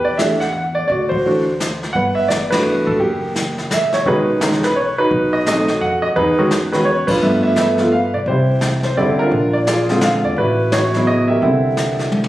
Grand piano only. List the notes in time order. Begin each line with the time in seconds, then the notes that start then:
Already playing: G4
0.05 D5
0.17 E3 A3 D4 G4 E5
0.40 F#5
0.52 F#5
0.75 D5
0.88 F#4 D5
1.09 F#4 C5
1.26 E3 A3 D4 F#4
1.93 B4 F#5
2.15 E5
2.28 D5
2.51 E3 A3 D4 F#4 B4
2.86 A4
2.96 F#4 G4
3.03 A#3
3.73 E5
3.94 C#5
4.06 D#3 G#3 C#4 D#4 F#4 G#4 B4
4.43 D#3 G#3 C#4 D#4
4.64 B4
4.76 C#5
4.98 D#4 F#4 B4
5.33 D#5
5.47 F#3 A3 C4 D#4 F#4 A4 D#5
5.81 F#5
6.02 D#5
6.16 D#4 G#4 B4
6.38 D#3 G#3 C#4 F#4
6.72 D#3 G#3 C#4 F#4 B4
6.85 C#5
7.07 D4 F4 B4
7.22 F3 A3 B3 E5
7.43 E5
7.56 A4 B4 E5
7.80 F3 A3 B3 F4
7.92 F5
8.14 D5
8.28 E4 G4 C5
8.84 C5
8.97 D3 G3 C4 E4 D5
9.19 D4 F4 A#4
9.53 D5
9.67 F4 G#4 D5
9.90 D3 G#3 C4 F4
10.02 F5
10.25 D5
10.38 E4 F#4 B4
10.72 E4 F#4 C#5
10.95 C#3 F#3 B3 E4
11.07 D#5
11.28 G4 A#4 E5
11.43 D3 G3 C4 E4